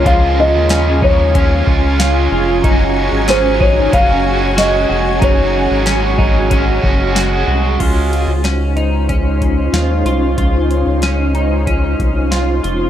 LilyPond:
<<
  \new Staff \with { instrumentName = "Felt piano" } { \time 4/4 \key des \major \tempo 4 = 93 f''8 ees''4 des''2 r8 | r4 c''8 des''8 f''4 ees''4 | des''2. r4 | r1 |
r1 | }
  \new Staff \with { instrumentName = "Ambient pad" } { \time 4/4 \key des \major << { <des' aes' aes''>1~ | <des' aes' aes''>1~ | <des' aes' aes''>1 | <des' ees' f' c''>1~ |
<des' ees' f' c''>1 | } \\ { f'1 | ges'1~ | ges'1 | aes1~ |
aes1 | } >> }
  \new Staff \with { instrumentName = "Clean electric guitar" } { \time 4/4 \key des \major f'4 des'8 ees'8 des'4 f'8 f'8 | ees'4 des'8 ees'8 des'4 ges'8 ges'8 | ees'4 des'8 ees'8 des'4 ges'8 ges'8 | f'4 des'8 ees'8 des'4 f'8 f'8 |
f'4 des'8 ees'8 des'4 f'8 f'8 | }
  \new Staff \with { instrumentName = "Overdriven electric guitar" } { \time 4/4 \key des \major <des f aes des' f'>2 <f aes des' f'>8 <aes des' f'>4. | <ges aes des' ges'>2 <ges aes des' ges'>8 <aes des' ges'>4. | <ges aes des' ges'>2 <ges aes des' ges'>8 <aes des' ges'>4. | r1 |
r1 | }
  \new Staff \with { instrumentName = "Analog synth bass" } { \clef bass \time 4/4 \key des \major des,8. ees,4.~ ees,16 des,4 f,,8 | ges,,8. aes,,4~ aes,,16 ges,,4. f,,8 | ges,,8. aes,,4.~ aes,,16 ges,,4 c,8 | des,8. des,2~ des,16 ees,8 c,8 |
des,8. des,4.~ des,16 c,4 f,,8 | }
  \new DrumStaff \with { instrumentName = "Drums" } \drummode { \time 4/4 <hh bd>4 <hh sn tamb>8 bd8 <hh bd>8 bd8 <hh sn tamb>4 | <hh bd>4 <hh sn tamb>8 bd8 <hh bd>4 <hh sn tamb>4 | <hh bd>4 <hh sn tamb>8 bd8 <hh bd>8 bd8 <hh sn tamb>4 | <cymc hh bd>8 hh8 <hh sn>8 hh8 <hh bd>8 <hh bd>8 <hh sn>8 hh8 |
<hh bd>8 hh8 <hh sn>8 hh8 <hh bd>8 <hh bd>8 <hh sn>8 hh8 | }
>>